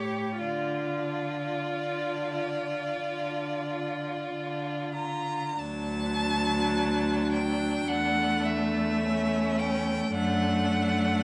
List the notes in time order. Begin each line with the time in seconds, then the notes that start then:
Already playing: A2 G4 C#5
0.38 D3 F4 D5
1.06 F4
1.70 D3
2.35 F4
3.00 D3
3.66 F4
4.31 D3
4.95 F4 A#5
5.58 D2 F#3 D4 A5
7.32 G5
7.88 E2 A3 F#5
8.45 E5
9.02 C#4
9.59 G5
10.14 F#2 A3 D4 F#5